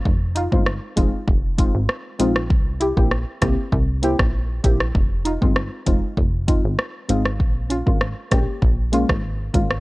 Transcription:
<<
  \new Staff \with { instrumentName = "Synth stab" } { \time 4/4 \key f \minor \tempo 4 = 98 r8 <ees' f'>16 <aes c' ees' f'>16 r8 <aes c' ees' f'>16 r8. <aes c' ees' f'>16 r8. <aes c' ees' f'>16 r16 | r8 <e' g'>16 <bes c' e' g'>16 r8 <bes c' e' g'>16 r8. <bes c' e' g'>16 r8. <bes c' e' g'>16 r16 | r8 <ees' f'>16 <aes c' ees' f'>16 r8 <aes c' ees' f'>16 r8. <aes c' ees' f'>16 r8. <aes c' ees' f'>16 r16 | r8 <des' f'>16 <aes bes des' f'>16 r8 <aes bes des' g'>16 r8. <aes bes des' f'>16 r8. <aes bes des' f'>16 r16 | }
  \new Staff \with { instrumentName = "Analog synth bass" } { \clef bass \time 4/4 \key f \minor f,,8. g,,8 r16 f,,16 r16 f,,8. aes,,16 r8 bes,,8 | c,8. bes,,8 r16 c,16 r16 c,8. bes,,8. bes,,8 | f,,8. g,,8 r16 f,,16 r16 f,,8. aes,,16 r8 aes,,8 | bes,,8. aes,,8 r16 bes,,16 r16 bes,,8. aes,,8. aes,,8 | }
  \new DrumStaff \with { instrumentName = "Drums" } \drummode { \time 4/4 bd8 hh16 bd16 ss8 <hh bd>8 bd8 <hh bd>8 ss8 hh16 ss16 | bd8 hh16 bd16 ss8 <hh bd ss>8 bd8 hh16 <bd ss>16 r8 <hh bd>16 ss16 | bd8 hh16 bd16 ss8 <hh bd>8 bd8 <hh bd>8 ss8 hh16 ss16 | bd8 hh16 bd16 ss8 <hh bd ss>8 bd8 hh16 <bd ss>16 r8 <hh bd>16 ss16 | }
>>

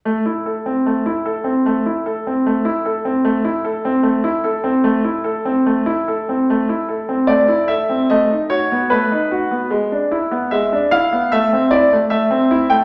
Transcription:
\new Staff \with { instrumentName = "Grand piano" } { \time 2/4 \key a \minor \tempo 4 = 75 << { r2 | r2 | r2 | r2 |
r4 d''8 e''8 | dis''8 cis''8 b'4 | r4 e''8 f''8 | e''8 d''8 e''8. g''16 | } \\ { a16 e'16 a'16 c'16 a16 e'16 a'16 c'16 | a16 e'16 a'16 c'16 a16 e'16 a'16 c'16 | a16 e'16 a'16 c'16 a16 e'16 a'16 c'16 | a16 e'16 a'16 c'16 a16 e'16 a'16 c'16 |
a16 e'16 a'16 c'16 a16 e'16 a'16 c'16 | a16 dis'16 fis'16 b16 a16 dis'16 fis'16 b16 | gis16 d'16 e'16 b16 gis16 d'16 e'16 b16 | a16 c'16 e'16 a16 a16 c'16 e'16 a16 | } >> }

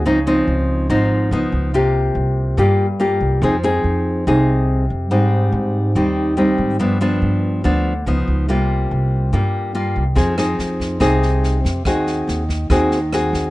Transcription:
<<
  \new Staff \with { instrumentName = "Nylon-string guitar" } { \time 4/4 \key f \minor \tempo 4 = 142 << { <f c' ees'>8 <f c' ees'>4. <f c' ees'>4 <f ces' ees'>4 | <bes f' g'>2 <bes f' g'>8 r8 <bes f' g'>4 | <c' ees' aes'>8 <c' ees' aes'>4. <c' ees' aes'>4. r8 | <g c' ees'>2 <g c' ees'>4 <g c' ees'>4 |
<f b d'>8 <f b d'>4. <f b d'>8 r8 <f ces' ees'>4 | <g bes f'>2 <g bes f'>4 <g bes f'>8 r8 | <c' ees' aes'>8 <c' ees' aes'>4. <c' ees' aes'>4. r8 | <c' ges' aes'>4. r8 <c' ges' aes'>8 r8 <c' ges' aes'>4 | } \\ { des2 aes,4 r4 | c2 g,2 | f2 c2 | aes,2 ees2 |
g,2 d4 r4 | c2 g,2 | f2 c2 | ees2 ees2 | } >> }
  \new Staff \with { instrumentName = "Upright bass" } { \clef bass \time 4/4 \key f \minor des,4 des,4 aes,,4 des,8 des,8 | c,4 c,4 g,4. c,8 | f,4 f,4 c,4. f,8 | aes,4 aes,4 ees,4. aes,8 |
g,4 g,4 d,4 des,8 des,8 | c,4 c,4 g,4. c,8 | f,4 f,4 c,4. f,8 | ees,4 ees,4 ees,4. ees,8 | }
  \new DrumStaff \with { instrumentName = "Drums" } \drummode { \time 4/4 r4 r4 r4 r4 | r4 r4 r4 r4 | r4 r4 r4 r4 | r4 r4 r4 r4 |
r4 r4 r4 r4 | r4 r4 r4 r4 | <bd sn>8 <ss sn>8 sn8 <bd sn>8 <bd ss sn>8 sn8 sn8 <bd sn>8 | <bd ss sn>8 sn8 sn8 <bd sn>8 <bd ss sn>8 sn8 <ss sn>8 <bd sn>8 | }
>>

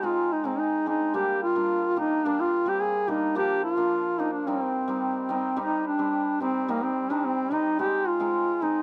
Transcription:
<<
  \new Staff \with { instrumentName = "Duduk" } { \time 2/4 \key c \minor \tempo 4 = 108 f'8 ees'16 c'16 ees'8 ees'8 | g'8 f'4 ees'8 | d'16 f'8 g'16 aes'8 ees'8 | g'8 f'4 ees'16 d'16 |
c'4. c'8 | ees'8 d'4 c'8 | bes16 c'8 d'16 c'8 ees'8 | g'8 f'4 ees'8 | }
  \new Staff \with { instrumentName = "Hammered dulcimer" } { \time 2/4 \key c \minor <aes c' ees'>8 r16 <aes c' ees'>16 r8 <aes c' d'>16 r16 | <g bes d'>8 r16 <g bes d'>16 r8 <g bes d'>16 r16 | <g bes d'>8 r16 <g bes c'>16 r8 <g bes d'>16 r16 | <f bes d'>8 r16 <f bes d'>16 r8 <f bes d'>16 r16 |
<g c' ees'>8 r16 <g c' ees'>16 r8 <g c' ees'>16 r16 | <g c' ees'>8 r16 <g c' d'>16 r8 <g c' ees'>16 r16 | <g c' ees'>8 r16 <g c' ees'>16 r8 <g c' ees'>16 r16 | <aes c' ees'>8 r16 <aes c' ees'>16 r8 <aes c' ees'>16 r16 | }
>>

